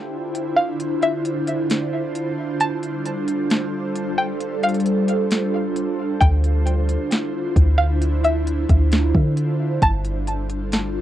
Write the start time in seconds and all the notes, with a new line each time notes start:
Already playing: D3 D4 E4 F4 C5
0.35 closed hi-hat
0.56 F5
0.80 closed hi-hat
1.03 E5, closed hi-hat
1.25 closed hi-hat
1.48 closed hi-hat
1.70 snare, closed hi-hat
2.15 closed hi-hat
2.60 G3 A4 A5, closed hi-hat
2.83 closed hi-hat
3.06 closed hi-hat
3.28 closed hi-hat
3.50 snare, closed hi-hat
3.96 closed hi-hat
4.18 G5
4.41 closed hi-hat
4.63 F5, closed hi-hat
4.69 closed hi-hat
4.75 closed hi-hat
4.80 closed hi-hat
4.86 closed hi-hat
5.08 closed hi-hat
5.31 snare, closed hi-hat
5.76 closed hi-hat
6.20 D2 D3 E4 G5, kick, closed hi-hat
6.44 closed hi-hat
6.67 closed hi-hat
6.89 closed hi-hat
7.11 snare, closed hi-hat
7.56 D2, kick, closed hi-hat
7.78 F5
8.02 closed hi-hat
8.24 E5, closed hi-hat
8.47 closed hi-hat
8.69 D2, kick, closed hi-hat
8.92 snare, closed hi-hat
9.15 D3, kick
9.37 closed hi-hat
9.82 G1 G3 D4 F4 A4 C5 A5, kick, closed hi-hat
10.05 closed hi-hat
10.27 closed hi-hat
10.50 closed hi-hat
10.72 snare, closed hi-hat